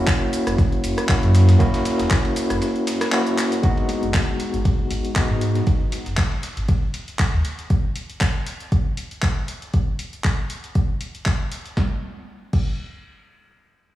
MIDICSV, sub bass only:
0, 0, Header, 1, 2, 480
1, 0, Start_track
1, 0, Key_signature, 5, "minor"
1, 0, Tempo, 508475
1, 1510, Time_signature, 4, 2, 24, 8
1, 13169, End_track
2, 0, Start_track
2, 0, Title_t, "Sub bass"
2, 0, Program_c, 0, 38
2, 443, Note_on_c, 0, 30, 93
2, 521, Note_off_c, 0, 30, 0
2, 791, Note_on_c, 0, 30, 88
2, 887, Note_off_c, 0, 30, 0
2, 1164, Note_on_c, 0, 42, 90
2, 1464, Note_off_c, 0, 42, 0
2, 1512, Note_on_c, 0, 30, 101
2, 1607, Note_off_c, 0, 30, 0
2, 1644, Note_on_c, 0, 30, 89
2, 1722, Note_off_c, 0, 30, 0
2, 1883, Note_on_c, 0, 28, 84
2, 1961, Note_off_c, 0, 28, 0
2, 2363, Note_on_c, 0, 30, 94
2, 2441, Note_off_c, 0, 30, 0
2, 3432, Note_on_c, 0, 32, 96
2, 3527, Note_off_c, 0, 32, 0
2, 3563, Note_on_c, 0, 32, 84
2, 3641, Note_off_c, 0, 32, 0
2, 3803, Note_on_c, 0, 30, 82
2, 3881, Note_off_c, 0, 30, 0
2, 4284, Note_on_c, 0, 32, 90
2, 4362, Note_off_c, 0, 32, 0
2, 4632, Note_on_c, 0, 32, 81
2, 4727, Note_off_c, 0, 32, 0
2, 5004, Note_on_c, 0, 44, 87
2, 5304, Note_off_c, 0, 44, 0
2, 5352, Note_on_c, 0, 32, 95
2, 5447, Note_off_c, 0, 32, 0
2, 5483, Note_on_c, 0, 32, 84
2, 5561, Note_off_c, 0, 32, 0
2, 5724, Note_on_c, 0, 30, 80
2, 5802, Note_off_c, 0, 30, 0
2, 6203, Note_on_c, 0, 32, 91
2, 6281, Note_off_c, 0, 32, 0
2, 6923, Note_on_c, 0, 39, 101
2, 7001, Note_off_c, 0, 39, 0
2, 13169, End_track
0, 0, End_of_file